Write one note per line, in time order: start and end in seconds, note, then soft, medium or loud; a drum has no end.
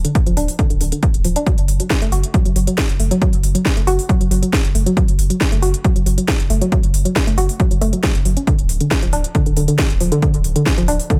0.05 0.10 D3 medium
0.05 closed hi-hat medium
0.15 kick loud
0.15 closed hi-hat medium
0.26 0.36 D1 medium
0.26 0.32 F3 medium
0.26 closed hi-hat medium
0.37 0.48 D1 loud
0.37 0.39 D4 loud
0.37 open hi-hat loud
0.48 open hi-hat medium
0.59 0.63 D3 loud
0.59 kick loud
0.59 closed hi-hat medium
0.70 0.80 D1 medium
0.70 0.73 D3 medium
0.70 closed hi-hat medium
0.81 0.92 D1 loud
0.81 0.85 D3 medium
0.81 open hi-hat loud
0.92 0.98 D3 medium
0.92 closed hi-hat medium
1.03 kick loud
1.03 closed hi-hat medium
1.14 1.24 D1 medium
1.14 closed hi-hat medium
1.24 1.36 D1 loud
1.24 1.27 F3 medium
1.24 open hi-hat loud
1.36 1.40 D4 loud
1.36 closed hi-hat medium
1.46 1.51 F#3 loud
1.46 kick loud
1.46 closed hi-hat medium
1.58 1.68 F#1 medium
1.58 closed hi-hat medium
1.68 1.80 F#1 loud
1.68 open hi-hat loud
1.80 1.86 F#3 medium
1.80 closed hi-hat medium
1.90 kick loud
1.90 snare loud
1.90 closed hi-hat medium
2.02 2.12 F#1 medium
2.02 2.07 A3 medium
2.02 closed hi-hat medium
2.12 2.23 F#1 loud
2.12 2.15 F#4 loud
2.12 open hi-hat loud
2.24 closed hi-hat medium
2.34 2.38 F#3 medium
2.34 kick loud
2.34 closed hi-hat medium
2.45 2.55 F#1 medium
2.45 2.48 F#3 medium
2.45 closed hi-hat medium
2.56 2.67 F#1 loud
2.56 2.60 F#3 medium
2.56 open hi-hat loud
2.67 2.73 F#3 medium
2.67 closed hi-hat medium
2.78 kick loud
2.78 snare loud
2.78 closed hi-hat medium
2.89 2.99 F#1 medium
2.89 closed hi-hat medium
3.00 3.11 F#1 loud
3.00 3.02 A3 medium
3.00 open hi-hat loud
3.11 3.15 F#3 loud
3.11 closed hi-hat medium
3.21 3.26 F#3 loud
3.21 kick loud
3.21 closed hi-hat medium
3.33 3.43 F#1 medium
3.33 closed hi-hat medium
3.44 3.55 F#1 loud
3.44 open hi-hat loud
3.55 3.61 F#3 medium
3.55 closed hi-hat medium
3.65 kick loud
3.65 snare loud
3.65 closed hi-hat medium
3.77 3.87 F#1 medium
3.77 3.82 A3 medium
3.77 closed hi-hat medium
3.87 3.98 F#1 loud
3.87 3.90 F#4 loud
3.87 open hi-hat loud
3.99 open hi-hat medium
4.09 4.13 F#3 loud
4.09 kick loud
4.09 closed hi-hat medium
4.20 4.30 F#1 medium
4.20 4.23 F#3 medium
4.20 closed hi-hat medium
4.31 4.42 F#1 loud
4.31 4.35 F#3 medium
4.31 open hi-hat loud
4.42 4.48 F#3 medium
4.42 closed hi-hat medium
4.53 kick loud
4.53 snare loud
4.53 closed hi-hat medium
4.64 4.74 F#1 medium
4.64 closed hi-hat medium
4.75 4.86 F#1 loud
4.75 4.77 A3 medium
4.75 open hi-hat loud
4.86 4.90 F#3 loud
4.86 closed hi-hat medium
4.97 5.01 F#3 loud
4.97 kick loud
4.97 closed hi-hat medium
5.08 5.18 F#1 medium
5.08 closed hi-hat medium
5.19 5.30 F#1 loud
5.19 open hi-hat loud
5.30 5.36 F#3 medium
5.30 closed hi-hat medium
5.41 kick loud
5.41 snare loud
5.41 closed hi-hat medium
5.52 5.62 F#1 medium
5.52 5.58 A3 medium
5.52 closed hi-hat medium
5.62 5.74 F#1 loud
5.62 5.65 F#4 loud
5.62 open hi-hat loud
5.74 closed hi-hat medium
5.84 5.89 F#3 loud
5.84 kick loud
5.84 closed hi-hat medium
5.96 6.06 F#1 medium
5.96 5.98 F#3 medium
5.96 closed hi-hat medium
6.06 6.17 F#1 loud
6.06 6.10 F#3 medium
6.06 open hi-hat loud
6.18 6.23 F#3 medium
6.18 closed hi-hat medium
6.28 kick loud
6.28 snare loud
6.28 closed hi-hat medium
6.40 6.49 F#1 medium
6.40 closed hi-hat medium
6.50 6.61 F#1 loud
6.50 6.53 A3 medium
6.50 open hi-hat loud
6.61 6.65 F#3 loud
6.61 closed hi-hat medium
6.72 6.76 F#3 loud
6.72 kick loud
6.72 closed hi-hat medium
6.83 6.93 F#1 medium
6.83 closed hi-hat medium
6.94 7.05 F#1 loud
6.94 open hi-hat loud
7.05 7.11 F#3 medium
7.05 closed hi-hat medium
7.16 kick loud
7.16 snare loud
7.16 closed hi-hat medium
7.27 7.37 F#1 medium
7.27 7.33 A3 medium
7.27 closed hi-hat medium
7.38 7.49 F#1 loud
7.38 7.40 F#4 loud
7.38 open hi-hat loud
7.49 open hi-hat medium
7.60 7.64 F#3 loud
7.60 kick loud
7.60 closed hi-hat medium
7.71 7.81 F#1 medium
7.71 7.73 F#3 medium
7.71 closed hi-hat medium
7.81 7.93 F#1 loud
7.81 7.86 A3 loud
7.81 open hi-hat loud
7.93 7.99 F#3 medium
7.93 closed hi-hat medium
8.03 8.06 F#3 medium
8.03 kick loud
8.03 snare loud
8.03 closed hi-hat medium
8.15 8.25 F#1 medium
8.15 closed hi-hat medium
8.25 8.36 F#1 loud
8.25 8.29 F#3 medium
8.25 open hi-hat loud
8.37 8.42 C#4 medium
8.37 closed hi-hat medium
8.47 8.51 D3 loud
8.47 kick loud
8.47 closed hi-hat medium
8.59 8.69 D1 medium
8.59 closed hi-hat medium
8.69 8.80 D1 loud
8.69 open hi-hat loud
8.80 8.86 D3 medium
8.80 closed hi-hat medium
8.91 kick loud
8.91 snare loud
8.91 closed hi-hat medium
9.02 9.12 D1 medium
9.02 9.08 F3 medium
9.02 closed hi-hat medium
9.13 9.24 D1 medium
9.13 9.15 D4 loud
9.13 open hi-hat loud
9.24 closed hi-hat medium
9.35 9.39 D3 loud
9.35 kick loud
9.35 closed hi-hat medium
9.46 9.56 D1 medium
9.46 9.49 D3 medium
9.46 closed hi-hat medium
9.57 9.68 D1 loud
9.57 9.61 D3 medium
9.57 open hi-hat loud
9.68 9.74 D3 medium
9.68 closed hi-hat medium
9.79 kick loud
9.79 snare loud
9.79 closed hi-hat medium
9.90 10.00 D1 medium
9.90 closed hi-hat medium
10.00 10.12 D1 loud
10.00 10.03 F3 medium
10.00 open hi-hat loud
10.12 10.16 D3 loud
10.12 closed hi-hat medium
10.22 10.27 D3 loud
10.22 kick loud
10.22 closed hi-hat medium
10.34 10.44 D1 medium
10.34 closed hi-hat medium
10.44 10.55 D1 loud
10.44 open hi-hat loud
10.56 10.61 D3 medium
10.56 closed hi-hat medium
10.66 kick loud
10.66 snare loud
10.66 closed hi-hat medium
10.78 10.87 D1 medium
10.78 10.83 F3 medium
10.78 closed hi-hat medium
10.88 10.99 D1 loud
10.88 10.91 D4 loud
10.88 open hi-hat loud
11.00 open hi-hat medium
11.10 11.14 D3 loud
11.10 kick loud
11.10 closed hi-hat medium